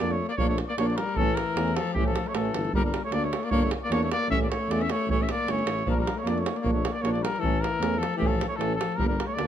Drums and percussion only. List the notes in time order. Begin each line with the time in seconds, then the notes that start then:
0.11 davul high
0.30 davul high
0.38 davul low
0.58 davul high
0.78 davul high
0.90 davul high
0.98 davul high
1.09 davul high
1.17 davul low
1.37 davul high
1.57 davul high
1.68 davul high
1.77 davul high
1.87 davul high
1.96 davul low
2.08 davul high
2.16 davul high
2.26 davul high
2.35 davul high
2.45 davul high
2.54 davul high
2.65 davul high
2.73 davul low
2.94 davul high
3.12 davul high
3.24 davul high
3.33 davul high
3.43 davul high
3.51 davul low
3.71 davul high
3.92 davul high
4.03 davul high
4.12 davul high
4.23 davul high
4.32 davul low
4.52 davul high
4.71 davul high
4.81 davul high
4.90 davul high
5.01 davul high
5.10 davul low
5.29 davul high
5.48 davul high
5.59 davul high
5.67 davul high
5.79 davul high
5.87 davul low
6.07 davul high
6.27 davul high
6.38 davul high
6.46 davul high
6.56 davul high
6.66 davul low
6.85 davul high
7.05 davul high
7.16 davul high
7.25 davul high
7.36 davul high
7.44 davul low
7.64 davul high
7.83 davul high
7.94 davul high
8.03 davul high
8.14 davul high
8.22 davul low
8.41 davul high
8.53 davul high
8.61 davul high
8.81 davul high
8.92 davul high
9.00 davul low
9.20 davul high
9.39 davul high